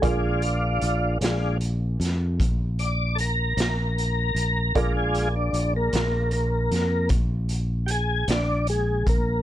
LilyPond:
<<
  \new Staff \with { instrumentName = "Upright piano" } { \time 12/8 \key bes \phrygian \tempo 4. = 51 <f' aes' bes' d''>1. | <f' aes' bes' d''>1. | }
  \new Staff \with { instrumentName = "Tonewheel organ" } { \time 12/8 \key bes \phrygian << { r2. r8 d''8 <a' bes'>2~ | <a' bes'>16 aes'8 d'8 bes8. bes4 r4 <g' aes'>8 d'8 aes8 bes8 | } \\ { <aes d' f'>4. <aes d' f'>8 r1 | <aes d' f'>8 r1 r4. | } >> }
  \new Staff \with { instrumentName = "Fingered electric bass" } { \clef bass \time 12/8 \key bes \phrygian bes,,4 bes,,8 bes,,4 f,8 bes,,4. bes,,4 bes,,8 | bes,,4 bes,,8 bes,,4 f,8 bes,,4. bes,,4 bes,,8 | }
  \new DrumStaff \with { instrumentName = "Drums" } \drummode { \time 12/8 <hh bd>8 hh8 hh8 <hh sn>8 hh8 <hh sn>8 <hh bd>8 hh8 hh8 <hh sn>8 hh8 hh8 | <hh bd>8 hh8 hh8 <hh sn>8 hh8 <hh sn>8 <hh bd>8 hh8 hh8 <hh sn>8 hh8 <hh bd>8 | }
>>